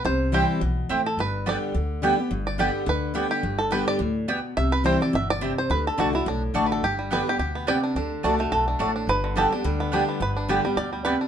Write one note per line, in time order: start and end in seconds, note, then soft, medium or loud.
0.04 0.43 C2 medium
0.04 0.59 C3 medium
0.04 0.35 C5 loud
0.32 0.60 E3 medium
0.32 0.60 G3 medium
0.32 0.43 C4 medium
0.32 0.61 C4 medium
0.32 0.44 E4 medium
0.32 0.61 E4 medium
0.32 0.60 G4 medium
0.32 0.44 C5 medium
0.32 0.44 G5 medium
0.61 0.86 B1 medium
0.61 0.89 B2 medium
0.89 1.14 A1 medium
0.89 1.17 A2 medium
0.89 1.00 C4 medium
0.89 1.00 E4 loud
0.89 1.00 C5 loud
0.89 1.00 G5 loud
1.06 1.18 A4 medium
1.17 1.56 G1 medium
1.17 1.73 G2 medium
1.17 1.48 B4 medium
1.46 1.74 D3 medium
1.46 1.74 G3 medium
1.46 1.56 B3 medium
1.46 1.74 B3 medium
1.46 1.57 G4 medium
1.46 1.74 G4 medium
1.46 1.57 D5 medium
1.46 1.74 D5 medium
1.46 1.57 G5 medium
1.75 2.13 D2 medium
1.75 2.01 D3 medium
2.02 2.18 D3 medium
2.02 2.18 G3 medium
2.02 2.13 B3 medium
2.02 2.18 B3 medium
2.02 2.13 G4 medium
2.02 2.17 G4 medium
2.02 2.13 D5 medium
2.02 2.13 G5 loud
2.18 2.31 B3 soft
2.18 2.31 G4 medium
2.31 2.69 G1 medium
2.31 2.85 G2 medium
2.47 2.60 D5 medium
2.58 2.85 D3 medium
2.58 2.86 G3 loud
2.58 2.69 B3 medium
2.58 2.87 B3 loud
2.58 2.69 G4 medium
2.58 2.87 G4 loud
2.58 2.86 G4 medium
2.58 2.70 D5 loud
2.58 2.70 G5 medium
2.86 3.25 D2 medium
2.86 3.13 D3 medium
2.86 3.15 B4 medium
3.14 3.42 D3 medium
3.14 3.42 G3 medium
3.14 3.25 B3 medium
3.14 3.43 B3 medium
3.14 3.26 G4 medium
3.14 3.43 G4 medium
3.14 3.26 D5 medium
3.14 3.26 G5 loud
3.31 3.60 G4 medium
3.43 3.81 G1 medium
3.43 3.98 G2 medium
3.58 3.72 A4 medium
3.71 3.99 D3 medium
3.71 3.99 G3 medium
3.71 3.82 B3 medium
3.71 3.99 B3 medium
3.71 3.82 G4 medium
3.71 4.00 G4 loud
3.71 3.87 B4 medium
3.71 3.82 D5 medium
3.71 3.83 G5 medium
3.88 4.53 D5 loud
3.99 4.38 D2 medium
3.99 4.27 A2 medium
4.28 4.56 B2 medium
4.28 4.38 B3 medium
4.28 4.39 G4 loud
4.28 4.39 D5 medium
4.28 4.39 G5 loud
4.57 4.95 C2 medium
4.57 5.11 C3 medium
4.57 4.71 E5 loud
4.72 4.85 B4 loud
4.84 5.00 E3 medium
4.84 5.00 G3 medium
4.84 5.00 C4 medium
4.84 4.95 C4 medium
4.84 5.00 E4 loud
4.84 4.96 E4 medium
4.84 5.00 C5 loud
4.84 4.96 C5 medium
4.84 4.96 G5 medium
5.01 5.14 C4 soft
5.01 5.13 E4 medium
5.01 5.15 D5 medium
5.13 5.52 G1 medium
5.13 5.40 B2 medium
5.13 5.30 E5 loud
5.30 5.56 D5 loud
5.41 5.68 C3 medium
5.41 5.52 C4 medium
5.41 5.52 E4 loud
5.41 5.52 C5 medium
5.41 5.52 G5 loud
5.58 5.71 C5 medium
5.70 5.89 D2 medium
5.70 5.96 D3 medium
5.70 5.86 B4 loud
5.87 5.98 A4 medium
5.98 6.22 C2 medium
5.98 6.13 D3 medium
5.98 6.08 A3 medium
5.98 6.13 A3 medium
5.98 6.13 D4 medium
5.98 6.08 F#4 medium
5.98 6.12 F#4 loud
5.98 6.14 F#4 medium
5.98 6.08 D5 medium
5.98 6.08 A5 medium
6.13 6.26 D4 soft
6.13 6.27 E4 medium
6.13 6.26 F#4 medium
6.26 6.50 B1 medium
6.26 6.80 A2 medium
6.26 6.42 D4 medium
6.54 6.78 A1 medium
6.54 6.81 D3 medium
6.54 6.64 A3 medium
6.54 6.81 A3 medium
6.54 6.82 D4 loud
6.54 6.65 F#4 medium
6.54 6.82 F#4 medium
6.54 6.65 D5 medium
6.54 6.65 A5 loud
6.66 6.70 B4 medium
6.72 6.84 A4 medium
6.83 7.21 G1 medium
6.83 7.37 G2 medium
6.83 7.12 G4 medium
6.99 7.37 G3 medium
7.11 7.26 D3 medium
7.11 7.26 G3 medium
7.11 7.21 B3 medium
7.11 7.27 B3 medium
7.11 7.21 G4 medium
7.11 7.26 G4 medium
7.11 7.28 B4 medium
7.11 7.21 D5 medium
7.11 7.21 G5 loud
7.27 7.40 B3 soft
7.27 7.39 G4 medium
7.27 7.38 G4 medium
7.39 7.77 D2 medium
7.39 7.66 B2 medium
7.39 7.80 G4 medium
7.55 7.93 B3 medium
7.67 7.95 C3 medium
7.67 7.77 B3 medium
7.67 7.77 G4 medium
7.67 7.77 D5 medium
7.67 7.82 D5 loud
7.67 7.78 G5 loud
7.83 7.96 D4 medium
7.95 8.14 D2 medium
7.95 8.23 D3 medium
7.95 8.24 D4 medium
8.23 8.48 C2 medium
8.23 8.39 D3 medium
8.23 8.33 A3 medium
8.23 8.39 A3 medium
8.23 8.68 D4 medium
8.23 8.39 D4 loud
8.23 8.34 F#4 medium
8.23 8.37 F#4 loud
8.23 8.34 D5 medium
8.23 8.34 A5 medium
8.39 8.78 A3 medium
8.39 8.52 D4 soft
8.39 8.51 F#4 medium
8.52 8.76 B1 medium
8.52 8.79 B2 medium
8.52 8.67 A4 medium
8.68 8.80 D4 medium
8.79 9.04 A1 medium
8.79 9.07 A2 medium
8.79 8.90 A3 loud
8.79 8.95 D4 medium
8.79 8.90 F#4 medium
8.79 8.90 D5 medium
8.79 8.90 A5 loud
8.96 9.52 D4 medium
9.07 9.45 G1 medium
9.07 9.62 G2 medium
9.07 9.35 B4 loud
9.24 9.62 D3 medium
9.36 9.51 D3 medium
9.36 9.52 G3 medium
9.36 9.46 B3 medium
9.36 9.52 B3 medium
9.36 9.46 G4 medium
9.36 9.51 G4 loud
9.36 9.52 A4 medium
9.36 9.47 D5 loud
9.36 9.47 G5 loud
9.52 9.65 B3 soft
9.52 9.93 D4 medium
9.52 9.64 G4 medium
9.64 10.02 D2 medium
9.64 9.92 D3 medium
9.64 10.05 G3 medium
9.80 10.07 B3 medium
9.92 10.20 D3 medium
9.92 10.20 G3 medium
9.92 10.02 B3 medium
9.92 10.20 B3 medium
9.92 10.36 D4 medium
9.92 10.03 G4 medium
9.92 10.20 G4 medium
9.92 10.03 D5 loud
9.92 10.03 G5 loud
10.09 10.47 B3 medium
10.20 10.58 G1 loud
10.20 10.75 G2 medium
10.20 10.64 B4 medium
10.37 11.21 D4 medium
10.49 10.64 D3 medium
10.49 10.64 G3 medium
10.49 10.59 B3 medium
10.49 10.64 B3 medium
10.49 10.59 G4 medium
10.49 10.90 G4 medium
10.49 10.63 G4 medium
10.49 10.59 D5 medium
10.49 10.60 G5 medium
10.64 10.91 G3 medium
10.64 10.77 B3 medium
10.64 10.77 G4 medium
10.76 11.14 D2 medium
10.76 11.04 B2 medium
10.76 11.04 D5 loud
10.93 11.28 G3 medium
11.05 11.28 C3 medium
11.05 11.15 B3 medium
11.05 11.15 G4 medium
11.05 11.19 B4 medium
11.05 11.16 D5 loud
11.05 11.16 G5 loud
11.21 11.28 D4 medium